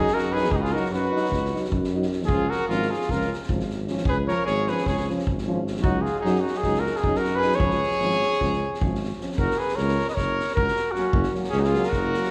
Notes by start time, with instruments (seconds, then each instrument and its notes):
Already playing: tuba F#2, french horn D#4, trumpet D#4, cornet G#4
0.07 snare
0.14 trumpet F#4, cornet A#4, snare
0.32 euphonium F#3, french horn D#4, trumpet G#4, cornet B4, snare
0.44 snare
0.51 tuba C#2, trumpet D#4, cornet G#4, kick
0.56 cornet F#4
0.61 trumpet F4, cornet G#4, snare
0.72 euphonium F#3, french horn D#4, trumpet F#4, cornet A#4
0.76 snare
0.85 snare
0.90 tuba F#2, trumpet F#4, cornet B4, snare
1.12 euphonium F#3, french horn D#4, snare
1.25 snare
1.30 tuba C#2, kick, snare
1.45 snare
1.52 euphonium F#3, french horn D#4
1.56 snare
1.64 snare
1.70 tuba F#2, kick
1.84 snare
1.92 euphonium F#3, french horn D#4
2.02 snare
2.12 snare
2.22 cornet G#4, snare
2.27 tuba C#2, euphonium F3, french horn C#4, trumpet F4, kick
2.49 trumpet F#4, cornet A#4, snare
2.68 tuba G#1, euphonium F3, french horn C#4, trumpet F4, cornet A#4, snare
2.82 snare
2.89 trumpet F4, cornet G#4
2.93 snare
3.01 snare
3.08 tuba C#2, euphonium F3, french horn C#4, trumpet F4, cornet A#4, kick, snare
3.21 snare
3.33 snare
3.43 snare
3.49 tuba G#1, euphonium F3, french horn C#4, kick
3.60 snare
3.70 snare
3.87 euphonium F3, french horn C#4, snare
3.97 snare
4.05 tuba C#2, trumpet G#4, cornet B4, kick
4.27 euphonium F3, french horn C#4, trumpet A#4, cornet C#5, snare
4.45 tuba G#1, trumpet G#4, cornet C#5, snare
4.67 euphonium F3, french horn C#4, trumpet G#4, cornet B4, snare
4.77 snare
4.86 tuba C#2, trumpet G#4, cornet C#5, kick, snare
4.97 snare
5.08 euphonium F3, french horn C#4, snare
5.19 snare
5.27 tuba G#1, kick
5.38 snare
5.46 euphonium F3, french horn C#4
5.67 snare
5.76 snare
5.82 tuba C#2, euphonium F#3, trumpet D#4, french horn D#4, cornet F#4, kick
6.02 trumpet F4, cornet G#4, snare
6.20 trumpet D#4, cornet G#4
6.24 tuba F#2, euphonium F#3, french horn D#4, snare
6.35 snare
6.40 trumpet D#4, cornet F#4
6.47 snare
6.54 cornet G#4, snare
6.62 tuba C#2, euphonium F#3, trumpet D#4, french horn D#4, kick, snare
6.74 snare
6.80 trumpet F#4, cornet A#4
6.86 snare
6.96 cornet G#4, snare
7.01 tuba F#2, euphonium F#3, trumpet D#4, french horn D#4, kick
7.15 cornet A#4, snare
7.19 trumpet F#4
7.24 snare
7.36 trumpet G#4, cornet B4
7.42 euphonium F#3, french horn D#4, snare
7.52 trumpet G#4, cornet C#5, snare
7.59 tuba C#2, euphonium F3, french horn C#4, kick
7.70 snare
7.82 snare
7.91 snare
7.99 tuba G#1, euphonium F3, french horn C#4, snare
8.10 snare
8.22 snare
8.32 snare
8.39 tuba C#2, euphonium F3, french horn C#4, kick, snare
8.53 snare
8.74 snare
8.80 tuba G#1, euphonium F3, french horn C#4, kick
8.95 snare
9.04 snare
9.12 snare
9.18 euphonium F3, french horn C#4, snare
9.32 snare
9.36 tuba F#1, trumpet F#4, cornet A#4, kick
9.50 snare
9.57 trumpet G#4, cornet B4, snare
9.68 snare
9.76 tuba C#2, trumpet A#4, cornet C#5, snare
9.88 snare
9.99 snare
10.08 trumpet B4, cornet D#5, snare
10.15 trumpet A#4, cornet C#5, kick, snare
10.19 tuba F#1
10.40 snare
10.48 snare
10.55 tuba C#2, trumpet F#4, cornet A#4, kick
10.68 snare
10.76 snare
10.92 euphonium F#3, trumpet C#4, cornet F#4, snare
10.96 french horn A#3
11.13 tuba F#1, kick
11.23 snare
11.33 euphonium F#3, french horn A#3, snare
11.44 snare
11.49 tuba C#2, trumpet C#4, cornet G#4, snare
11.58 trumpet D#4, cornet F#4 G#4
11.64 trumpet F4, snare
11.73 euphonium F#3, french horn A#3, snare
11.83 cornet A#4, snare
11.89 trumpet F#4, kick, snare
11.94 tuba F#1
12.13 euphonium F#3, french horn A#3, snare
12.24 snare